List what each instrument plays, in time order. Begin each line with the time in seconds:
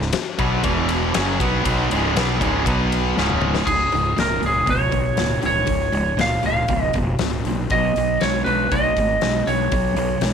Already playing: fingered electric bass C#1
0.02 snare
0.13 snare, ride
0.38 fingered electric bass B1, distorted electric guitar B2 F#3 B3, kick, ride
0.63 fingered electric bass E1, distorted electric guitar E2 B2 E3, kick, ride
0.89 ride
1.14 fingered electric bass F#1, distorted electric guitar F#2 C#3 F#3, snare, ride
1.40 fingered electric bass B1, distorted electric guitar B2 F#3 B3, kick, ride
1.65 fingered electric bass B1, distorted electric guitar B2 F#3 B3, kick, ride
1.91 fingered electric bass C#1, distorted electric guitar C#2 G#2 C#3, ride
2.16 fingered electric bass B1, distorted electric guitar B2 F#3 B3, snare, ride
2.40 fingered electric bass C#1, distorted electric guitar C#2 G#2 C#3, kick, ride
2.66 fingered electric bass B1, distorted electric guitar B2 F#3 B3, kick, ride
2.92 ride
3.17 fingered electric bass C#1, distorted electric guitar C#2 G#2 C#3, snare
3.30 mid tom
3.41 mid tom
3.54 snare
3.66 fingered electric bass C#1, distorted electric guitar C#2 G#2, lead electric guitar G#4, kick, crash
3.92 fingered electric bass C#1, distorted electric guitar C#2 G#2, open hi-hat
4.16 fingered electric bass C#1, distorted electric guitar C#2 A#2, lead electric guitar A#4, snare, open hi-hat
4.40 fingered electric bass C#1, distorted electric guitar C#2 A#2, open hi-hat
4.46 lead electric guitar G#4
4.66 fingered electric bass C#1, distorted electric guitar C#2 B2, kick, open hi-hat
4.70 lead electric guitar C#5
4.91 fingered electric bass B1, distorted electric guitar C#2 B2, kick, open hi-hat
5.16 fingered electric bass C#1, distorted electric guitar C#2 A#2, snare, open hi-hat
5.41 fingered electric bass C#1, distorted electric guitar C#2 A#2, open hi-hat
5.46 lead electric guitar C#5
5.66 fingered electric bass C#1, distorted electric guitar C#2 G#2, kick, open hi-hat
5.92 fingered electric bass C#1, distorted electric guitar C#2 G#2, open hi-hat
6.17 fingered electric bass C#1, distorted electric guitar C#2 A#2, snare, open hi-hat
6.21 lead electric guitar F5
6.43 fingered electric bass C#1, distorted electric guitar C#2 A#2, lead electric guitar F5, open hi-hat
6.68 fingered electric bass C#1, distorted electric guitar C#2 B2, kick, open hi-hat
6.93 fingered electric bass F1, distorted electric guitar C#2 B2, kick, open hi-hat
7.19 fingered electric bass C#1, distorted electric guitar C#2 A#2, snare, open hi-hat
7.45 fingered electric bass B1, distorted electric guitar C#2 A#2, open hi-hat
7.70 fingered electric bass B1, distorted electric guitar B2 F#3, lead electric guitar D#5, kick, open hi-hat
7.96 fingered electric bass B1, distorted electric guitar B2 F#3, open hi-hat
8.21 fingered electric bass B1, distorted electric guitar B2 G#3, lead electric guitar C#5, snare, open hi-hat
8.44 fingered electric bass B1, distorted electric guitar B2 G#3, lead electric guitar B4, open hi-hat
8.71 fingered electric bass B1, distorted electric guitar B2 A3, lead electric guitar D#5, kick, open hi-hat
8.97 fingered electric bass G#1, distorted electric guitar B2 A3, kick, open hi-hat
9.21 fingered electric bass B1, distorted electric guitar B2 G#3, snare, open hi-hat
9.47 fingered electric bass B1, distorted electric guitar B2 G#3, lead electric guitar C#5, open hi-hat
9.72 fingered electric bass B1, distorted electric guitar B2 F#3, kick, open hi-hat
9.96 fingered electric bass B1, distorted electric guitar B2 F#3, open hi-hat
10.21 fingered electric bass B1, distorted electric guitar B2 G#3, snare, open hi-hat